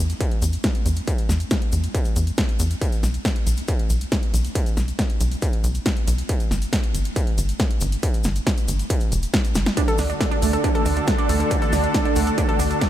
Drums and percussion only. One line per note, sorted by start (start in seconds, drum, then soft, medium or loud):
0.10 closed hi-hat soft
0.10 cabasa soft
0.21 kick loud
0.21 closed hi-hat medium
0.21 cabasa soft
0.32 closed hi-hat soft
0.42 closed hi-hat medium
0.42 cabasa medium
0.53 closed hi-hat soft
0.53 cabasa soft
0.64 kick loud
0.64 snare loud
0.64 closed hi-hat medium
0.64 cabasa soft
0.75 closed hi-hat soft
0.86 closed hi-hat medium
0.86 cabasa medium
0.96 closed hi-hat soft
0.96 cabasa soft
1.08 kick loud
1.08 closed hi-hat medium
1.08 cabasa medium
1.18 closed hi-hat soft
1.18 cabasa soft
1.29 snare medium
1.29 cabasa medium
1.40 closed hi-hat soft
1.40 cabasa soft
1.51 kick loud
1.51 snare loud
1.51 closed hi-hat medium
1.51 cabasa medium
1.62 closed hi-hat soft
1.72 closed hi-hat medium
1.72 cabasa medium
1.84 closed hi-hat soft
1.84 cabasa soft
1.95 kick loud
1.95 closed hi-hat medium
1.95 cabasa medium
2.05 closed hi-hat soft
2.05 cabasa soft
2.16 closed hi-hat medium
2.16 cabasa medium
2.27 closed hi-hat soft
2.27 cabasa soft
2.38 kick loud
2.38 snare loud
2.38 closed hi-hat medium
2.38 cabasa soft
2.49 closed hi-hat soft
2.60 closed hi-hat medium
2.60 cabasa medium
2.71 closed hi-hat soft
2.71 cabasa soft
2.82 kick loud
2.82 closed hi-hat medium
2.82 cabasa medium
2.92 closed hi-hat soft
2.92 cabasa soft
3.03 snare medium
3.03 cabasa medium
3.14 closed hi-hat soft
3.14 cabasa soft
3.25 kick loud
3.25 snare loud
3.25 closed hi-hat medium
3.25 cabasa medium
3.36 closed hi-hat soft
3.47 closed hi-hat medium
3.47 cabasa medium
3.57 closed hi-hat soft
3.57 cabasa soft
3.68 kick loud
3.68 closed hi-hat medium
3.68 cabasa soft
3.79 closed hi-hat soft
3.90 closed hi-hat medium
3.90 cabasa medium
4.01 closed hi-hat soft
4.01 cabasa soft
4.12 kick loud
4.12 snare loud
4.12 closed hi-hat medium
4.12 cabasa soft
4.23 closed hi-hat soft
4.34 closed hi-hat medium
4.34 cabasa medium
4.45 closed hi-hat soft
4.45 cabasa soft
4.55 kick loud
4.55 closed hi-hat medium
4.55 cabasa soft
4.66 closed hi-hat soft
4.66 cabasa soft
4.77 snare medium
4.77 cabasa medium
4.88 closed hi-hat soft
4.88 cabasa soft
4.99 kick loud
4.99 snare loud
4.99 closed hi-hat medium
4.99 cabasa soft
5.10 closed hi-hat soft
5.20 closed hi-hat medium
5.20 cabasa medium
5.32 closed hi-hat soft
5.32 cabasa soft
5.42 kick loud
5.42 closed hi-hat medium
5.42 cabasa medium
5.53 closed hi-hat soft
5.64 closed hi-hat medium
5.64 cabasa medium
5.75 closed hi-hat soft
5.75 cabasa soft
5.86 kick loud
5.86 snare loud
5.86 closed hi-hat medium
5.86 cabasa soft
5.97 closed hi-hat soft
6.08 closed hi-hat medium
6.08 cabasa medium
6.18 closed hi-hat soft
6.18 cabasa soft
6.29 kick loud
6.29 closed hi-hat medium
6.29 cabasa soft
6.40 closed hi-hat soft
6.40 cabasa soft
6.51 snare medium
6.51 cabasa medium
6.62 closed hi-hat soft
6.62 cabasa soft
6.73 kick loud
6.73 snare loud
6.73 closed hi-hat medium
6.73 cabasa soft
6.84 closed hi-hat soft
6.95 closed hi-hat medium
6.95 cabasa medium
7.05 closed hi-hat soft
7.05 cabasa soft
7.16 kick loud
7.16 closed hi-hat medium
7.16 cabasa medium
7.27 closed hi-hat soft
7.38 closed hi-hat medium
7.38 cabasa medium
7.49 closed hi-hat soft
7.49 cabasa soft
7.60 kick loud
7.60 snare loud
7.60 closed hi-hat medium
7.60 cabasa soft
7.71 closed hi-hat soft
7.81 closed hi-hat medium
7.81 cabasa medium
7.92 closed hi-hat soft
7.92 cabasa soft
8.03 kick loud
8.03 closed hi-hat loud
8.03 cabasa medium
8.14 closed hi-hat soft
8.14 cabasa soft
8.24 snare medium
8.24 cabasa medium
8.36 closed hi-hat soft
8.36 cabasa soft
8.47 kick loud
8.47 snare loud
8.47 closed hi-hat medium
8.47 cabasa soft
8.57 closed hi-hat soft
8.57 cabasa soft
8.68 closed hi-hat medium
8.68 cabasa medium
8.79 closed hi-hat soft
8.79 cabasa soft
8.90 kick loud
8.90 closed hi-hat medium
8.90 cabasa soft
9.00 closed hi-hat soft
9.00 cabasa soft
9.12 closed hi-hat medium
9.12 cabasa medium
9.23 closed hi-hat soft
9.23 cabasa soft
9.33 kick loud
9.33 snare loud
9.33 closed hi-hat medium
9.33 cabasa soft
9.45 closed hi-hat soft
9.45 cabasa soft
9.55 snare medium
9.55 closed hi-hat medium
9.55 cabasa medium
9.66 snare loud
9.66 closed hi-hat soft
9.66 cabasa soft
9.77 kick loud
9.77 closed hi-hat loud
9.77 cabasa medium
9.88 closed hi-hat soft
9.88 cabasa soft
9.98 snare medium
9.98 open hi-hat loud
9.98 cabasa medium
10.10 closed hi-hat soft
10.10 cabasa soft
10.21 kick loud
10.21 snare loud
10.21 closed hi-hat medium
10.21 cabasa soft
10.32 closed hi-hat soft
10.42 open hi-hat medium
10.42 cabasa medium
10.53 closed hi-hat soft
10.53 cabasa soft
10.64 kick loud
10.64 closed hi-hat medium
10.64 cabasa soft
10.75 closed hi-hat soft
10.86 open hi-hat loud
10.86 cabasa medium
10.96 closed hi-hat soft
10.96 cabasa soft
11.07 kick loud
11.07 snare loud
11.07 closed hi-hat medium
11.07 cabasa soft
11.19 closed hi-hat soft
11.29 open hi-hat medium
11.29 cabasa medium
11.40 closed hi-hat soft
11.40 cabasa soft
11.51 kick loud
11.51 closed hi-hat loud
11.51 cabasa medium
11.62 closed hi-hat soft
11.62 cabasa soft
11.73 snare medium
11.73 open hi-hat loud
11.73 cabasa loud
11.84 closed hi-hat soft
11.84 cabasa soft
11.94 kick loud
11.94 snare loud
11.94 closed hi-hat medium
11.94 cabasa medium
12.05 closed hi-hat soft
12.16 open hi-hat medium
12.16 cabasa loud
12.27 closed hi-hat soft
12.27 cabasa soft
12.38 kick loud
12.38 closed hi-hat medium
12.38 cabasa medium
12.49 closed hi-hat soft
12.60 open hi-hat loud
12.60 cabasa medium
12.71 closed hi-hat soft
12.71 cabasa soft
12.81 kick loud
12.81 snare loud
12.81 closed hi-hat medium
12.81 cabasa soft